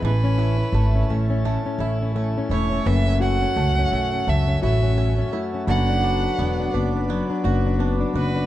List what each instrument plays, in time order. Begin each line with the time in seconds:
Already playing: steel-string acoustic guitar G#3 B3 E4, five-string banjo G#3 B3 E4
0.02 upright bass A1, five-string banjo E3, harmonium E4 A4 C#5 A5, violin B4
0.24 steel-string acoustic guitar C#4
0.38 five-string banjo C#4, steel-string acoustic guitar E4
0.60 steel-string acoustic guitar C#4
0.72 upright bass G#1, five-string banjo A3, steel-string acoustic guitar A3
0.95 steel-string acoustic guitar C#4
1.09 upright bass A1, steel-string acoustic guitar A3, five-string banjo C#4
1.30 steel-string acoustic guitar C#4
1.45 steel-string acoustic guitar A2, five-string banjo A3
1.66 steel-string acoustic guitar C#4
1.79 upright bass A1, five-string banjo E4, steel-string acoustic guitar E4
2.02 steel-string acoustic guitar C#4
2.15 steel-string acoustic guitar A3, five-string banjo C#4
2.38 steel-string acoustic guitar C#4
2.49 upright bass E1, steel-string acoustic guitar A3, five-string banjo E4, violin C#5
2.72 steel-string acoustic guitar C#4
2.85 upright bass F#1, steel-string acoustic guitar F#2, five-string banjo E3, harmonium F#4 C#5 E5, violin E5
3.07 steel-string acoustic guitar C#4
3.20 five-string banjo C#4, steel-string acoustic guitar F#4, violin F#5
3.41 steel-string acoustic guitar C#4
3.56 upright bass C#2, steel-string acoustic guitar A3, five-string banjo A3
3.79 steel-string acoustic guitar C#4
3.92 upright bass B1, steel-string acoustic guitar A3, five-string banjo C#4
4.14 steel-string acoustic guitar C#4
4.27 upright bass C#2, steel-string acoustic guitar F#2, five-string banjo A3, violin E5
4.48 steel-string acoustic guitar C#4
4.62 upright bass A1, five-string banjo E4, steel-string acoustic guitar F#4, violin E5
4.83 steel-string acoustic guitar C#4
4.97 steel-string acoustic guitar A3, five-string banjo C#4
5.18 steel-string acoustic guitar C#4
5.32 steel-string acoustic guitar A3, five-string banjo E4
5.54 steel-string acoustic guitar C#4
5.66 upright bass F#1, five-string banjo D3, steel-string acoustic guitar F#3, harmonium B4 D5 B5, violin F#5
5.89 steel-string acoustic guitar D4
6.02 five-string banjo D4, steel-string acoustic guitar F#4
6.24 steel-string acoustic guitar D4
6.38 upright bass E1, steel-string acoustic guitar B3, five-string banjo B3
6.60 steel-string acoustic guitar D4
6.74 upright bass F#1, steel-string acoustic guitar B3, five-string banjo D4
6.96 steel-string acoustic guitar D4
7.09 steel-string acoustic guitar F#3, five-string banjo B3
7.30 steel-string acoustic guitar D4
7.44 upright bass F#1, steel-string acoustic guitar F#4, five-string banjo F#4
7.66 steel-string acoustic guitar D4
7.79 steel-string acoustic guitar B3, five-string banjo D4
8.01 steel-string acoustic guitar D4
8.14 upright bass F#1, steel-string acoustic guitar B3, five-string banjo F#4
8.18 violin B4
8.36 steel-string acoustic guitar D4